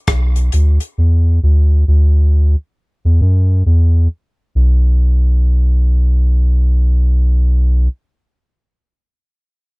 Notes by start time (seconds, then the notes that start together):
0.07 B1, kick, cross-stick, closed hi-hat
0.36 closed hi-hat
0.52 D2, closed hi-hat
0.80 closed hi-hat
0.98 E2
1.43 D2
1.88 D2
3.05 E2
3.21 F#2
3.66 E2
4.55 B1